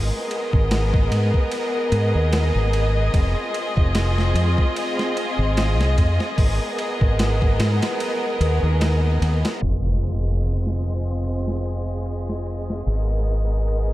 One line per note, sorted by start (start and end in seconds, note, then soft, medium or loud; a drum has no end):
0.00 3.11 B3 medium
0.00 9.59 G#4 medium
0.00 3.11 A#4 medium
0.00 9.60 D#5 medium
0.31 ride medium
0.53 1.08 G#1 loud
0.53 kick medium
0.71 snare loud
0.71 ride medium
0.94 kick medium
1.11 1.31 G#2 medium
1.11 ride medium
1.34 kick medium
1.51 ride medium
1.92 2.12 G#2 medium
1.92 ride medium
2.15 2.50 D#2 medium
2.33 snare loud
2.33 ride medium
2.55 3.10 G#1 loud
2.73 ride medium
3.14 3.34 F1 medium
3.14 6.36 C4 medium
3.14 6.36 F4 medium
3.14 kick loud
3.14 ride medium
3.54 ride medium
3.77 4.32 F1 loud
3.77 kick medium
3.95 snare loud
3.95 ride medium
4.18 snare soft
4.35 4.55 F2 medium
4.35 ride medium
4.58 kick medium
4.76 ride medium
4.99 snare soft
5.17 ride medium
5.38 5.79 G#1 loud
5.57 snare loud
5.57 ride medium
5.79 5.95 C2 medium
5.79 snare medium
5.97 6.18 F2 loud
5.97 kick medium
5.97 ride medium
6.20 snare soft
6.38 6.58 G#1 medium
6.38 9.60 B3 medium
6.38 9.60 A#4 medium
6.38 kick loud
6.38 open hi-hat medium
6.79 ride medium
7.01 7.57 G#1 loud
7.01 kick medium
7.19 snare loud
7.19 ride medium
7.42 kick medium
7.59 7.80 G#2 medium
7.59 snare loud
7.59 ride medium
7.82 snare medium
7.82 ride medium
8.00 ride medium
8.40 8.61 D#2 medium
8.40 ride medium
8.63 9.18 D#2 loud
8.81 snare loud
8.81 ride medium
9.22 9.42 D#2 loud
9.22 ride medium
9.45 snare loud
9.45 ride medium
9.62 12.83 F1 medium
9.62 12.84 C4 medium
9.62 12.84 F4 medium
9.62 13.93 G#4 medium
9.62 13.93 D#5 medium
9.62 ride medium
9.62 impact medium
10.03 ride medium
10.44 ride medium
10.67 snare soft
10.84 ride medium
11.24 ride medium
11.48 snare soft
11.65 ride medium
12.06 ride medium
12.29 snare soft
12.46 ride medium
12.70 snare soft
12.87 13.93 G#1 medium
12.87 13.93 B3 medium
12.87 13.93 A#4 medium
12.87 open hi-hat medium
13.27 ride medium
13.68 ride medium